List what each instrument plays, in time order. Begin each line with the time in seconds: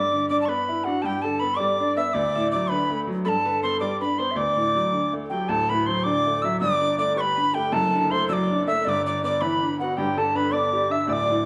Already playing: upright piano G2, harp G4 A4 C5 D5, flute D5, tin whistle D6
0.12 upright piano D3
0.29 upright piano D4, flute D5, harp D5, tin whistle D6
0.41 tin whistle A5
0.45 upright piano B3, flute B4, harp B4, tin whistle B5 C#6
0.69 upright piano E4
0.84 upright piano D4, flute F#4, tin whistle F#5
1.02 upright piano G2, flute G4, harp G4, tin whistle G5 A5
1.22 upright piano D3, harp A4, flute A4, tin whistle A5
1.40 upright piano B3, harp B4, tin whistle B5
1.56 upright piano G3, harp D5, flute D5, tin whistle D6
1.80 upright piano D4, flute D5
1.97 upright piano B3, harp E5, flute E5, tin whistle E6
2.13 upright piano D2, harp D5, flute D5, tin whistle D6
2.35 upright piano A2, harp E5
2.51 upright piano F#3, flute D5, harp D5, tin whistle D6
2.69 upright piano D3, flute B4, harp B4, tin whistle B5
2.90 upright piano A3
3.07 upright piano F#3
3.25 upright piano G2, harp A4, flute A4, tin whistle B5
3.29 tin whistle A5
3.45 upright piano D3, harp B4
3.63 upright piano B3, harp C5, tin whistle C6
3.80 upright piano G3, harp D5, flute D5, tin whistle D6
4.01 upright piano D4, harp B4, tin whistle B5
4.18 upright piano B3, harp C5, flute C5, tin whistle C6
4.31 flute E5
4.36 upright piano D2, harp D5, flute D5, tin whistle D6
4.56 upright piano A2
4.75 upright piano F#3
4.93 upright piano D3
5.13 upright piano A3
5.30 upright piano F#3, flute G4, tin whistle G5
5.49 upright piano D1 D2, flute A4, tin whistle A5
5.69 upright piano A2, flute B4, tin whistle B5
5.86 upright piano F#3, flute C5, tin whistle C6
6.04 upright piano D3, flute D5, tin whistle D6
6.26 upright piano A3
6.42 upright piano F#3, flute E5, tin whistle E6
6.60 upright piano G1 G2, flute D5, tin whistle D6
6.82 upright piano D3
6.98 upright piano A3, flute D5, tin whistle D6
7.16 upright piano G3, flute B4, tin whistle C#6
7.21 tin whistle B5
7.37 upright piano D4
7.54 upright piano A3, flute G4, tin whistle G5
7.72 upright piano F#1 F#2, flute A4, tin whistle A5
7.94 upright piano D3
8.10 upright piano A3, flute C5, tin whistle C6
8.28 upright piano F#3, flute D5, tin whistle E6
8.33 tin whistle D6
8.50 upright piano D4
8.67 upright piano A3, flute E5, tin whistle E6
8.85 upright piano G1 G2, flute D5, tin whistle E6
8.89 tin whistle D6
9.06 upright piano D3, flute D5, tin whistle D6
9.23 upright piano B3, flute D5, tin whistle D6
9.41 upright piano E3, flute B4, tin whistle B5
9.63 upright piano D4
9.80 upright piano B3, flute F#4, tin whistle F#5
9.97 upright piano G1 G2, harp G4, flute G4, tin whistle G5
10.17 upright piano D3, harp A4, flute A4, tin whistle A5
10.34 upright piano D4, flute B4, harp B4, tin whistle B5
10.52 upright piano B3, flute D5, harp D5, tin whistle D6
10.73 upright piano G4, flute D5
10.90 upright piano D4, harp E5, flute E5, tin whistle E6
11.07 upright piano D1 D2, flute D5, harp D5, tin whistle E6
11.13 tin whistle D6
11.29 upright piano A2